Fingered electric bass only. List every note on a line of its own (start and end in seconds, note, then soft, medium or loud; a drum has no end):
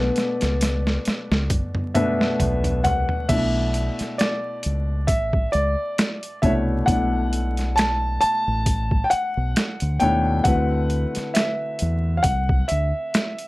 0.43 0.97 C#2 medium
1.07 muted fingered electric bass stroke soft
1.31 1.48 C#2 medium
2.41 2.86 B1 loud
2.86 3.06 C2 medium
3.30 3.88 B1 loud
4.00 muted fingered electric bass stroke soft
4.66 5.09 C#2 medium
5.09 5.47 A1 medium
5.55 5.75 C#2 medium
6.44 6.81 C2 medium
6.88 8.18 B1 loud
8.23 muted fingered electric bass stroke soft
8.48 9.02 A1 medium
9.13 muted fingered electric bass stroke soft
9.37 9.54 B1 medium
9.82 9.99 D2 medium
10.02 10.40 D#2 medium
10.46 11.05 D2 medium
11.17 muted fingered electric bass stroke soft
11.82 12.19 E2 medium
12.25 12.63 C2 medium
12.71 12.91 D2 medium